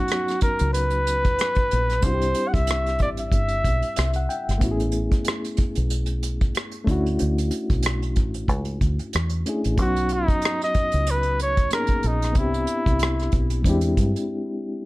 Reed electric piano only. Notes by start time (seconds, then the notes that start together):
Already playing: F#3 B3 C#4 D#4 F#4
2.01 G3 C4 D4
2.06 E4 F#4
2.14 G4
3.97 E5
4.16 F#5
4.29 G5
4.58 A3 B3 C#4
4.64 E4 F#4
4.71 G#4
6.84 A3 C#4 D4
6.90 E4 F#4
9.46 A3 C#4 D4 E4 G#4
9.76 F#3 B3 C#4
9.82 D#4 F#4
11.71 A#3 B3 C#4 D#4 G#4
12.33 B3 C4 D4
12.39 E4 G4
13.62 G3 C4 D4
13.67 G#3 E4 G4